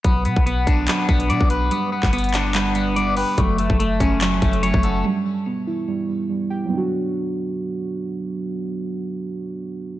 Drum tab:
HH |x---x---x---x---x---x-x-x---x---|x-------xxxxx---x---x---x---o---|x---x---x---x---x---x-x-x---x---|--------------------------------|
CP |----------------x---------------|------x-----x---x---------------|----------------x---------------|--------------------------------|
BD |o-----o-----o-------o-----o-----|------o-------------------------|o-----o-----o-------o-----o-----|--------------------------------|

HH |--------------------------------|--------------------------------|
CP |--------------------------------|--------------------------------|
BD |--------------------------------|--------------------------------|